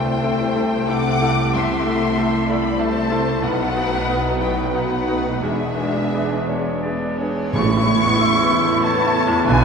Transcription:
0.00 1.54 C2 medium
0.00 3.39 C2 medium
0.00 3.39 C3 medium
0.00 0.19 A3 soft
0.00 3.39 A3 medium
0.00 3.40 A3 medium
0.00 0.19 E4 soft
0.00 3.39 E4 medium
0.00 3.40 E4 medium
0.00 0.19 A4 soft
0.00 0.89 C5 medium
0.00 0.86 G5 loud
0.23 0.52 A3 medium
0.23 0.53 E4 medium
0.23 0.53 A4 medium
0.55 0.85 A3 soft
0.55 0.86 E4 soft
0.55 0.86 A4 medium
0.89 1.18 A3 medium
0.89 1.18 E4 soft
0.89 1.18 A4 medium
0.89 1.53 F#5 loud
0.89 1.53 D6 loud
1.21 1.50 A3 medium
1.21 1.50 E4 medium
1.21 1.50 A4 medium
1.53 1.84 C2 medium
1.53 2.46 E5 medium
1.53 2.49 C6 medium
1.86 2.14 A3 medium
1.86 2.14 E4 soft
1.86 2.14 A4 medium
2.17 2.45 A3 medium
2.17 2.45 E4 medium
2.17 2.46 A4 medium
2.48 2.77 A3 medium
2.48 2.77 E4 medium
2.48 2.77 A4 medium
2.48 2.80 D5 medium
2.48 2.80 B5 medium
2.79 3.08 A3 medium
2.79 3.08 E4 medium
2.79 3.08 A4 medium
2.79 3.43 C5 medium
2.79 3.43 A5 loud
3.11 3.39 A3 medium
3.11 3.40 E4 medium
3.11 3.40 A4 medium
3.42 3.73 B1 medium
3.42 5.39 B1 medium
3.42 5.39 B2 medium
3.42 4.69 F#3 medium
3.42 4.70 B3 medium
3.42 4.69 D#4 medium
3.42 4.70 D#4 medium
3.42 4.38 B4 loud
3.42 4.40 F#5 loud
3.74 4.04 B3 soft
3.74 4.04 D#4 soft
3.74 4.04 F#4 medium
4.08 4.37 B3 medium
4.08 4.37 D#4 medium
4.08 4.37 F#4 medium
4.39 4.71 F#3 soft
4.39 4.71 B3 soft
4.39 4.71 D#4 soft
4.39 4.71 B4 medium
4.39 4.73 G5 medium
4.72 5.42 F#3 medium
4.72 5.05 B3 soft
4.72 5.08 B3 medium
4.72 5.42 D#4 medium
4.72 5.05 D#4 soft
4.72 5.42 D#4 medium
4.72 5.05 F#4 medium
4.72 5.41 B4 medium
4.72 5.44 F#5 medium
5.08 5.44 A3 medium
5.08 5.39 B3 medium
5.08 5.40 D#4 medium
5.08 5.40 F#4 medium
5.42 7.32 E1 medium
5.42 5.77 E2 medium
5.42 7.32 E2 medium
5.42 7.32 G#3 medium
5.42 7.20 G#3 medium
5.42 7.19 D4 medium
5.42 7.33 D4 medium
5.42 6.83 G#4 medium
5.42 6.83 E5 medium
5.78 6.10 B3 soft
5.78 6.10 D4 soft
5.78 6.10 G#4 soft
6.13 6.45 B3 soft
6.13 6.45 D4 soft
6.13 6.45 G#4 soft
6.13 6.50 B4 medium
6.48 6.80 B3 soft
6.48 6.80 D4 soft
6.48 6.80 G#4 soft
6.48 6.82 C#5 medium
6.82 7.16 B3 soft
6.82 7.16 D4 soft
6.82 7.16 G#4 soft
6.82 7.17 D5 medium
7.19 7.51 B3 soft
7.19 7.51 D4 soft
7.19 7.51 G#4 soft
7.19 7.52 C#5 medium
7.52 8.08 A1 medium
7.52 9.44 A1 medium
7.52 8.08 A2 medium
7.52 8.47 A2 loud
7.52 7.69 C#3 medium
7.52 9.64 B3 medium
7.52 9.64 E4 medium
7.52 9.43 E4 medium
7.52 9.64 E4 medium
7.52 9.64 B5 medium
7.52 8.79 C#6 loud
7.52 tam-tam medium
7.70 7.86 E3 medium
7.77 8.11 E4 medium
7.86 8.03 A3 medium
7.99 8.33 E2 medium
7.99 8.19 B3 medium
8.19 8.35 A3 medium
8.19 8.54 E4 medium
8.19 8.86 E5 medium
8.35 8.51 E3 medium
8.42 8.76 B3 medium
8.52 8.68 C#3 medium
8.64 8.83 E3 medium
8.64 8.84 A3 medium
8.82 8.99 A3 medium
8.82 9.18 B3 medium
8.82 9.47 C#5 medium
8.82 9.46 A5 loud
8.82 9.47 A5 loud
8.98 9.14 B3 medium
9.05 9.39 E4 medium
9.14 9.30 A3 medium
9.27 9.47 E2 medium
9.27 9.46 E3 medium
9.46 9.64 B1 loud
9.46 9.64 B1 medium
9.46 9.64 B2 loud
9.46 9.61 D3 medium
9.46 9.64 D4 medium
9.46 9.64 B4 medium
9.46 9.64 G#5 loud

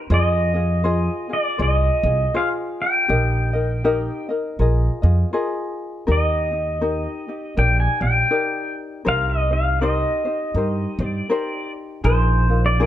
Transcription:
0.00 0.10 G4 medium
0.00 0.10 C5 medium
0.10 1.07 F2 medium
0.10 0.55 F4 medium
0.10 0.54 G#4 medium
0.10 0.55 C5 medium
0.10 0.53 D#5 medium
0.10 1.33 D#5 medium
0.54 0.83 F4 soft
0.54 0.84 G#4 soft
0.54 0.84 D#5 soft
0.84 1.29 F4 medium
0.84 1.28 G#4 medium
0.84 1.29 C5 medium
0.84 1.30 D#5 medium
1.29 1.58 F4 soft
1.29 1.59 G#4 soft
1.33 1.62 D5 medium
1.58 1.88 C2 medium
1.58 2.04 F4 medium
1.58 2.04 G#4 medium
1.58 2.03 C5 soft
1.58 2.03 D#5 medium
1.62 2.38 D#5 medium
2.03 2.23 C2 medium
2.03 2.33 F4 soft
2.03 2.34 G#4 soft
2.03 2.35 D#5 soft
2.34 3.09 F4 medium
2.34 3.10 G#4 medium
2.34 3.08 C5 medium
2.34 3.09 D#5 medium
2.34 2.48 F5 loud
2.82 4.26 G5 medium
3.08 4.07 A#1 medium
3.08 3.54 D#4 medium
3.08 3.53 G4 medium
3.08 3.53 A#4 medium
3.08 3.52 D#5 medium
3.53 3.84 D#4 soft
3.53 3.84 A#4 soft
3.53 3.84 D#5 medium
3.84 4.29 D#4 medium
3.84 4.29 G4 medium
3.84 4.29 A#4 medium
3.84 4.28 D#5 medium
4.29 4.60 D#4 soft
4.29 4.58 A#4 soft
4.29 4.59 D#5 soft
4.59 4.88 A#1 medium
4.59 5.03 F4 medium
4.59 5.02 G#4 medium
4.59 5.03 A#4 medium
4.59 5.01 D#5 medium
5.02 5.23 F2 medium
5.02 5.32 F4 soft
5.02 5.33 G#4 soft
5.02 5.33 D#5 soft
5.33 6.07 F4 medium
5.33 6.08 G#4 medium
5.33 6.06 A#4 medium
5.33 7.59 D#5 medium
6.07 7.05 D#2 medium
6.07 6.52 D#4 medium
6.07 6.50 G4 medium
6.07 6.51 A#4 medium
6.12 7.64 D#5 medium
6.51 6.80 D#4 soft
6.51 6.81 G4 soft
6.81 7.27 D#4 medium
6.81 7.27 G4 medium
6.81 7.26 A#4 medium
7.28 7.56 D#4 soft
7.28 7.57 G4 soft
7.57 7.86 A#1 medium
7.57 8.02 D#4 medium
7.57 8.01 G4 soft
7.57 8.01 A#4 medium
7.57 8.00 D5 medium
7.57 7.79 G5 medium
7.80 8.02 G#5 medium
8.01 8.21 A#1 medium
8.01 8.29 D#4 soft
8.01 8.30 G4 soft
8.01 8.31 D5 soft
8.01 8.73 G5 medium
8.31 9.05 D#4 medium
8.31 9.04 G4 medium
8.31 9.05 A#4 medium
8.31 9.06 D5 medium
9.05 10.04 C2 medium
9.05 9.50 D#4 medium
9.05 9.50 G4 medium
9.05 9.50 A#4 medium
9.05 9.49 C5 medium
9.05 9.30 F5 medium
9.30 9.52 D#5 medium
9.51 9.81 D#4 soft
9.51 9.81 G4 soft
9.51 9.81 C5 soft
9.51 9.80 F5 medium
9.81 10.26 D#4 medium
9.81 10.24 G4 medium
9.81 10.25 A#4 medium
9.81 10.24 C5 medium
9.81 11.03 D#5 medium
10.25 10.55 D#4 soft
10.25 10.56 G4 soft
10.25 10.56 C5 soft
10.55 10.84 G2 medium
10.55 11.00 D#4 medium
10.55 11.00 G4 medium
10.55 11.00 A#4 medium
10.55 10.99 C5 medium
10.99 11.19 G2 medium
10.99 11.29 D#4 soft
10.99 11.30 G4 soft
10.99 11.30 C5 medium
11.03 11.71 D5 medium
11.29 12.04 D#4 medium
11.29 12.04 G4 medium
11.29 12.03 A#4 medium
11.29 12.05 C5 medium
12.04 12.86 A#1 medium
12.04 12.49 D#4 medium
12.04 12.49 F4 medium
12.04 12.49 G#4 medium
12.04 12.48 A#4 medium
12.04 12.61 C5 medium
12.49 12.79 D#4 soft
12.49 12.79 F4 soft
12.49 12.79 A#4 soft
12.66 12.81 D5 medium
12.80 12.86 D#4 medium
12.80 12.86 F4 medium
12.80 12.86 G#4 medium
12.80 12.86 A#4 medium
12.80 12.86 D5 medium

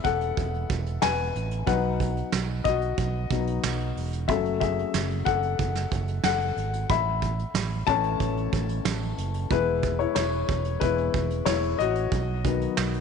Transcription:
0.00 1.64 E3 medium
0.00 1.64 B3 medium
0.00 1.65 E4 medium
0.00 1.70 G#4 medium
0.00 1.70 E5 medium
0.00 1.05 F#5 medium
0.05 0.31 E1 medium
0.05 0.99 A4 medium
0.05 kick medium
0.05 closed hi-hat medium
0.21 closed hi-hat soft
0.37 0.64 E1 medium
0.37 kick medium
0.37 closed hi-hat medium
0.54 closed hi-hat soft
0.70 0.97 E1 medium
0.70 kick medium
0.70 closed hi-hat medium
0.86 closed hi-hat soft
1.02 1.30 E1 loud
1.02 1.64 B4 medium
1.02 1.69 G#5 loud
1.02 snare loud
1.02 closed hi-hat medium
1.19 closed hi-hat soft
1.36 1.62 A1 medium
1.36 closed hi-hat medium
1.51 closed hi-hat medium
1.66 2.21 B1 loud
1.66 2.61 F#3 medium
1.66 2.61 B3 soft
1.66 2.62 D#4 medium
1.66 2.29 B4 medium
1.66 2.29 F#5 medium
1.66 kick medium
1.66 closed hi-hat medium
2.00 kick medium
2.00 closed hi-hat medium
2.17 closed hi-hat soft
2.32 2.60 B1 medium
2.32 snare medium
2.32 closed hi-hat medium
2.64 2.92 B1 medium
2.64 3.60 F#4 medium
2.64 3.59 D#5 medium
2.64 kick medium
2.64 closed hi-hat medium
2.81 closed hi-hat soft
2.98 3.25 B1 medium
2.98 kick medium
2.98 closed hi-hat medium
3.30 3.58 B1 medium
3.30 3.60 F#3 soft
3.30 3.61 B3 soft
3.30 3.61 D#4 soft
3.30 kick medium
3.30 closed hi-hat medium
3.47 closed hi-hat soft
3.64 3.91 B1 medium
3.64 snare loud
3.64 closed hi-hat medium
3.80 closed hi-hat soft
3.96 4.29 E1 medium
3.96 open hi-hat medium
4.13 closed hi-hat soft
4.28 4.82 F#1 medium
4.28 4.72 F#3 medium
4.28 4.73 A3 soft
4.28 4.73 C#4 medium
4.28 4.60 A4 medium
4.28 4.59 E5 medium
4.28 kick medium
4.28 closed hi-hat medium
4.45 closed hi-hat soft
4.60 5.23 G#4 medium
4.60 5.22 E5 medium
4.60 kick medium
4.60 closed hi-hat medium
4.79 closed hi-hat soft
4.94 5.21 F#1 medium
4.94 snare medium
4.94 closed hi-hat medium
5.10 closed hi-hat soft
5.25 5.54 F#1 medium
5.25 6.21 A4 medium
5.25 6.22 F#5 medium
5.25 kick medium
5.25 closed hi-hat medium
5.42 closed hi-hat soft
5.59 5.86 F#1 medium
5.59 kick medium
5.59 closed hi-hat medium
5.75 snare soft
5.92 6.19 F#1 medium
5.92 kick medium
5.92 closed hi-hat medium
6.08 closed hi-hat soft
6.24 6.51 F#1 loud
6.24 6.87 A4 medium
6.24 6.92 F#5 medium
6.24 snare loud
6.24 closed hi-hat medium
6.40 closed hi-hat soft
6.56 6.84 G#1 medium
6.56 closed hi-hat medium
6.73 closed hi-hat medium
6.89 7.43 A1 medium
6.89 7.52 E5 medium
6.89 7.51 B5 medium
6.89 kick loud
6.89 closed hi-hat medium
7.22 kick medium
7.22 closed hi-hat medium
7.39 closed hi-hat soft
7.54 7.81 A1 medium
7.54 snare medium
7.54 closed hi-hat medium
7.87 8.15 A1 medium
7.87 9.47 E3 medium
7.87 9.47 A3 medium
7.87 9.48 C#4 medium
7.87 8.82 C#5 medium
7.87 8.81 A5 loud
7.87 kick medium
7.87 closed hi-hat medium
8.04 closed hi-hat soft
8.20 8.47 A1 medium
8.20 kick medium
8.20 closed hi-hat medium
8.37 closed hi-hat soft
8.53 8.80 A1 medium
8.53 kick medium
8.53 closed hi-hat medium
8.69 closed hi-hat medium
8.85 9.12 A1 loud
8.85 snare loud
8.85 closed hi-hat loud
9.02 closed hi-hat soft
9.18 9.45 F#1 medium
9.18 closed hi-hat medium
9.34 closed hi-hat soft
9.50 10.04 E1 loud
9.50 10.79 E3 medium
9.50 10.80 G#3 medium
9.50 10.80 B3 medium
9.50 9.97 E4 medium
9.50 10.02 B4 medium
9.50 kick medium
9.50 closed hi-hat medium
9.83 kick medium
9.83 closed hi-hat medium
9.99 10.15 E4 medium
9.99 10.14 C#5 medium
9.99 closed hi-hat soft
10.15 10.43 E1 medium
10.15 10.78 E4 medium
10.15 10.83 C#5 medium
10.15 snare loud
10.15 closed hi-hat medium
10.32 closed hi-hat soft
10.49 10.76 E1 medium
10.49 kick medium
10.49 closed hi-hat medium
10.64 closed hi-hat soft
10.80 11.08 E1 medium
10.80 11.10 E3 medium
10.80 11.11 G#3 soft
10.80 11.11 B3 medium
10.80 11.43 E4 medium
10.80 11.48 B4 medium
10.80 kick medium
10.80 closed hi-hat medium
10.98 closed hi-hat soft
11.14 11.41 E1 medium
11.14 kick medium
11.14 closed hi-hat medium
11.30 closed hi-hat medium
11.45 11.73 E1 loud
11.45 11.55 E4 medium
11.45 11.53 C#5 medium
11.45 snare loud
11.45 closed hi-hat medium
11.63 closed hi-hat soft
11.79 12.06 A1 medium
11.79 13.01 F#4 medium
11.79 13.01 D#5 medium
11.79 closed hi-hat medium
11.95 closed hi-hat medium
12.12 12.65 B1 loud
12.12 kick medium
12.12 closed hi-hat medium
12.44 12.88 D#3 medium
12.44 12.88 F#3 soft
12.44 12.89 B3 medium
12.44 kick medium
12.44 closed hi-hat medium
12.61 closed hi-hat soft
12.77 13.01 B1 medium
12.77 snare medium
12.77 closed hi-hat medium
12.93 closed hi-hat soft

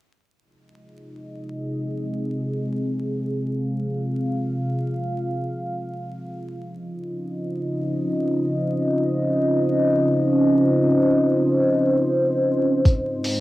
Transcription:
0.40 6.59 C4 medium
0.40 12.82 F4 medium
0.40 6.59 G#4 medium
0.40 3.48 D#5 medium
3.51 6.59 F5 medium
6.61 12.81 C#4 medium
6.61 13.40 C5 medium
6.61 12.81 D#5 medium
12.85 13.40 G#3 medium
12.85 13.40 F4 medium
12.85 13.40 D#5 medium
12.85 kick loud
12.85 closed hi-hat medium
13.24 open hi-hat medium

